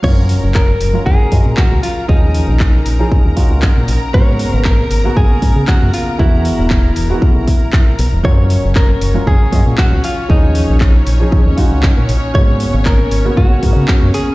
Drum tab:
CC |x-------|--------|--------|--------|
HH |-o-o-o-o|-o-o-o-o|-o-o-o-o|-o-o-o-o|
CP |--x---x-|--x---x-|--x---x-|--x---x-|
BD |o-o-ooo-|o-o-ooo-|o-o-ooo-|o-o-ooo-|

CC |--------|--------|--------|
HH |-o-o-o-o|-o-o-o-o|-o-o-o-o|
CP |--x---x-|--x---x-|--x---x-|
BD |o-o-ooo-|o-o-ooo-|o-o-ooo-|